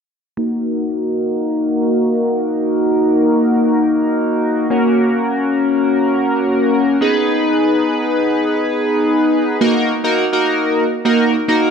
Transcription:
0.37 4.66 A#3 medium
0.37 4.66 D#4 medium
0.37 4.66 F#4 medium
0.37 4.67 A#4 medium
4.70 6.97 A#3 medium
4.70 6.97 C#4 medium
4.70 6.97 F#4 medium
4.70 6.97 A#4 medium
7.01 9.57 B3 medium
7.01 9.57 D#4 medium
7.01 9.57 G#4 medium
7.01 9.57 B4 medium
9.61 9.92 A#3 medium
9.61 9.92 D#4 medium
9.61 9.92 F#4 medium
9.61 9.92 A#4 medium
10.04 10.24 A#3 medium
10.04 10.25 D#4 medium
10.04 10.25 F#4 medium
10.04 10.25 A#4 medium
10.33 10.84 A#3 medium
10.33 10.84 D#4 medium
10.33 10.84 F#4 medium
10.33 10.84 A#4 medium
11.05 11.36 A#3 medium
11.05 11.36 D#4 medium
11.05 11.36 F#4 medium
11.05 11.36 A#4 loud
11.48 11.71 A#3 medium
11.48 11.71 D#4 medium
11.48 11.71 F#4 medium
11.48 11.71 A#4 medium

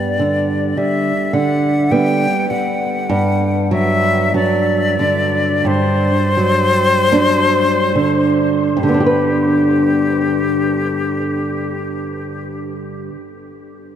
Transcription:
0.00 0.73 G2 medium
0.00 0.16 G3 medium
0.00 0.16 B3 medium
0.00 0.79 D5 medium
0.19 1.11 D3 medium
0.77 1.68 G3 medium
0.77 1.35 E5 loud
1.33 2.26 D3 medium
1.33 1.93 F#5 loud
1.91 2.46 G3 medium
1.91 2.46 B3 medium
1.91 2.51 G5 loud
2.50 3.11 G3 medium
2.50 3.71 F#5 loud
3.09 5.62 G2 loud
3.71 4.33 F#3 medium
3.71 4.33 E5 loud
4.34 4.95 F#3 medium
4.34 4.95 D4 medium
4.34 5.68 D5 loud
4.99 6.09 D3 medium
5.65 8.73 G2 medium
5.65 8.52 C5 loud
6.37 7.11 F#3 medium
7.12 7.93 F#3 medium
7.12 7.93 D4 medium
7.95 8.77 D3 medium
8.77 13.09 G2 medium
8.77 13.10 G4 medium
8.83 13.15 D3 medium
8.89 13.21 B3 medium
8.94 13.26 D4 medium
9.00 9.06 G4 medium
9.06 13.39 B4 medium

